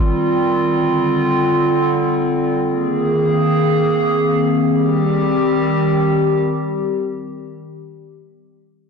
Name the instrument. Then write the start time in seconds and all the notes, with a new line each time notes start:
ambient pad
Already playing: D#3 G3 C4 F4
0.70 D3
2.66 D#3 A#3 G#4
4.61 D#3 G3 C4 G4